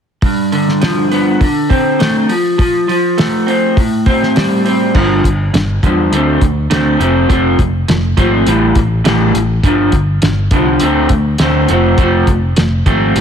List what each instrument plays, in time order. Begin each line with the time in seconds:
0.22 clean electric guitar G2, kick, open hi-hat
0.52 clean electric guitar D3, open hi-hat
0.69 snare
0.81 clean electric guitar F3, snare, open hi-hat
1.11 clean electric guitar B3, open hi-hat
1.40 clean electric guitar D3, kick, open hi-hat
1.70 clean electric guitar C4, kick, open hi-hat
1.99 clean electric guitar A3, snare, open hi-hat
2.29 clean electric guitar F3, open hi-hat
2.58 clean electric guitar F3, kick, open hi-hat
2.88 clean electric guitar F3, open hi-hat
3.18 clean electric guitar A3, snare, open hi-hat
3.47 clean electric guitar C4, open hi-hat
3.76 clean electric guitar A2, kick, open hi-hat
4.06 clean electric guitar C4, kick, open hi-hat
4.23 snare
4.36 clean electric guitar G3, snare, open hi-hat
4.66 clean electric guitar C4, open hi-hat
4.95 picked electric bass G1, clean electric guitar G2 D3 F3, kick, crash
5.24 picked electric bass G1, clean electric guitar G2 D3, kick, closed hi-hat
5.53 picked electric bass G1, clean electric guitar G2 D3, snare, closed hi-hat
5.83 picked electric bass E2, clean electric guitar G2 D3 F3, kick, closed hi-hat
6.11 picked electric bass D2, clean electric guitar D3 A3 C4, closed hi-hat
6.41 picked electric bass D2, clean electric guitar D3 A3, kick, closed hi-hat
6.70 picked electric bass D2, clean electric guitar D3 A3 C4, snare, closed hi-hat
6.99 picked electric bass F1, clean electric guitar F3 A3 C4, closed hi-hat
7.29 picked electric bass F1, clean electric guitar F3 A3 C4, kick, closed hi-hat
7.59 picked electric bass F1, clean electric guitar F3 A3, kick, closed hi-hat
7.88 picked electric bass F1, clean electric guitar F3 A3, snare, closed hi-hat
8.17 picked electric bass G#1, clean electric guitar F3 A3 C4, kick, closed hi-hat
8.47 picked electric bass A1, clean electric guitar A2 E3 G3, closed hi-hat
8.75 picked electric bass A1, clean electric guitar A2 E3, kick, closed hi-hat
9.04 picked electric bass A1, clean electric guitar A2 E3 G3, snare, closed hi-hat
9.34 picked electric bass A1, clean electric guitar A2 E3, closed hi-hat
9.63 picked electric bass G1, clean electric guitar G2 D3 F3, kick, closed hi-hat
9.92 picked electric bass G1, clean electric guitar G2 D3, kick, closed hi-hat
10.22 picked electric bass G1, clean electric guitar G2 D3, snare, closed hi-hat
10.51 picked electric bass C2, clean electric guitar G2 D3 F3, kick, closed hi-hat
10.80 picked electric bass D2, clean electric guitar D3 A3 C4, closed hi-hat
11.09 picked electric bass D2, clean electric guitar D3 A3, kick, closed hi-hat
11.38 picked electric bass D2, clean electric guitar D3 A3 C4, snare, closed hi-hat
11.68 picked electric bass F1, clean electric guitar F3 A3 C4, closed hi-hat
11.98 picked electric bass F1, clean electric guitar F3 A3 C4, kick, closed hi-hat
12.27 picked electric bass F1, clean electric guitar F3 A3, kick, closed hi-hat
12.56 picked electric bass F1, clean electric guitar F3 A3, snare, closed hi-hat
12.86 picked electric bass G#1, clean electric guitar F3 A3 C4, kick, closed hi-hat
13.15 picked electric bass A1, clean electric guitar A2 E3 G3, closed hi-hat